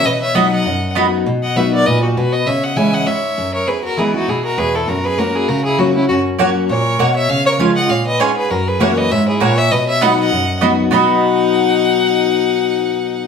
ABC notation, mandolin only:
X:1
M:4/4
L:1/8
Q:"Swing" 1/4=199
K:B
V:1 name="Mandolin"
z2 [B,Fdb] z3 [B,Fdb] z | z8 | z8 | z8 |
z8 | z2 [A,Fcf] z3 [A,Fcf] z | z2 [C^Ecg] z3 [CEcg] z | z2 [A,Ecf] z3 [A,Ecf] z |
z2 [B,Fdb] z3 [B,Fdb] z | [B,Fdb]8- | [B,Fdb]8 |]